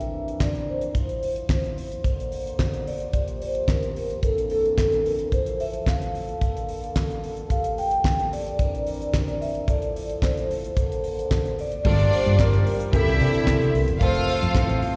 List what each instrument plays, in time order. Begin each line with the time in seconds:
Already playing: french horn section E3 C4 D4 A#4, vibraphone E5
0.01 closed hi-hat
0.28 closed hi-hat
0.40 vibraphone D5, kick, snare, clap, closed hi-hat
0.55 closed hi-hat
0.69 vibraphone C5
0.81 closed hi-hat
0.95 french horn section F3 E4 C5, kick, closed hi-hat
1.09 closed hi-hat
1.23 open hi-hat
1.36 closed hi-hat
1.49 kick, snare, clap, closed hi-hat
1.64 closed hi-hat
1.78 open hi-hat
1.92 closed hi-hat
2.04 french horn section D3 A#3, kick, closed hi-hat
2.20 closed hi-hat
2.32 open hi-hat
2.47 closed hi-hat
2.59 kick, snare, clap, closed hi-hat
2.74 closed hi-hat
2.87 vibraphone D5, open hi-hat
3.00 closed hi-hat
3.13 french horn section F3 A#3 G4, kick, closed hi-hat
3.28 closed hi-hat
3.42 vibraphone C5, open hi-hat
3.55 closed hi-hat
3.68 vibraphone A#4, kick, snare, clap, closed hi-hat
3.83 closed hi-hat
3.96 open hi-hat
4.10 closed hi-hat
4.22 french horn section E3 A#3 C4 D4, vibraphone A4, kick, closed hi-hat
4.38 closed hi-hat
4.50 vibraphone A4, open hi-hat
4.66 closed hi-hat
4.78 kick, snare, clap, closed hi-hat
4.92 closed hi-hat
5.06 vibraphone A#4, open hi-hat
5.19 closed hi-hat
5.32 french horn section E3 F3 A4, vibraphone C5, kick, closed hi-hat
5.46 closed hi-hat
5.60 vibraphone E5, open hi-hat
5.74 closed hi-hat
5.87 vibraphone F5, kick, snare, clap, closed hi-hat
6.02 closed hi-hat
6.15 open hi-hat
6.29 closed hi-hat
6.41 french horn section D3 A#3, kick, closed hi-hat
6.57 closed hi-hat
6.69 open hi-hat
6.84 closed hi-hat
6.96 kick, snare, clap, closed hi-hat
7.10 closed hi-hat
7.24 open hi-hat
7.37 closed hi-hat
7.49 french horn section F3 A#3 G4, vibraphone F5, kick, closed hi-hat
7.64 closed hi-hat
7.78 vibraphone G5, open hi-hat
7.91 closed hi-hat
8.04 kick, snare, clap, closed hi-hat
8.19 closed hi-hat
8.33 vibraphone D5, open hi-hat
8.47 closed hi-hat
8.59 french horn section E3 C4 D4 A#4, vibraphone D5, kick, closed hi-hat
8.75 closed hi-hat
8.86 open hi-hat
9.02 closed hi-hat
9.14 vibraphone D5, kick, snare, clap, closed hi-hat
9.28 closed hi-hat
9.41 vibraphone E5, open hi-hat
9.55 closed hi-hat
9.68 french horn section F3 E4 A4, vibraphone D5, kick, closed hi-hat
9.82 closed hi-hat
9.96 open hi-hat
10.10 closed hi-hat
10.22 vibraphone C5, kick, snare, clap, closed hi-hat
10.37 closed hi-hat
10.51 open hi-hat
10.64 closed hi-hat
10.76 french horn section D3 A#3 A4, kick, closed hi-hat
10.92 closed hi-hat
11.04 open hi-hat
11.19 closed hi-hat
11.31 kick, snare, clap, closed hi-hat
11.45 closed hi-hat
11.59 vibraphone D5, open hi-hat
11.72 closed hi-hat
11.84 fingered electric bass G1, french horn section F3 A#3 G4, grand piano G3 A#3 D4 F4 A4, horn section A#3 D4 F4, string section D4 D5, kick, crash
11.99 closed hi-hat
12.13 vibraphone C5, open hi-hat
12.26 fingered electric bass G2, closed hi-hat
12.38 fingered electric bass G1, grand piano G3 A#3 D4 F4 A#4, vibraphone A#4, kick, snare, clap, closed hi-hat
12.53 closed hi-hat
12.67 open hi-hat
12.80 closed hi-hat
12.89 grand piano E3 A#3, horn section D4 E4, vibraphone A#4
12.93 fingered electric bass C2, french horn section D3 E4, grand piano C4 D4 G4, string section E4 E5, horn section G4, vibraphone A4, kick, closed hi-hat
13.08 fingered electric bass C2, closed hi-hat
13.20 fingered electric bass C3, grand piano E3 A#3 C4 D4 C5, vibraphone A4, open hi-hat
13.35 closed hi-hat
13.47 fingered electric bass C3, kick, snare, clap, closed hi-hat
13.62 closed hi-hat
13.74 fingered electric bass C2, vibraphone A#4, open hi-hat
13.88 fingered electric bass E1, closed hi-hat
14.00 fingered electric bass F1, french horn section C3 C4 F5, grand piano F3 A3 C4 F4 A4, horn section A3 F4 A4, string section F4 F5, vibraphone C5, kick, closed hi-hat
14.15 closed hi-hat
14.29 open hi-hat
14.42 fingered electric bass F2, closed hi-hat
14.54 fingered electric bass A1, grand piano E3 F3 A3 C4 A4, vibraphone F5, kick, snare, clap, closed hi-hat
14.69 closed hi-hat
14.83 open hi-hat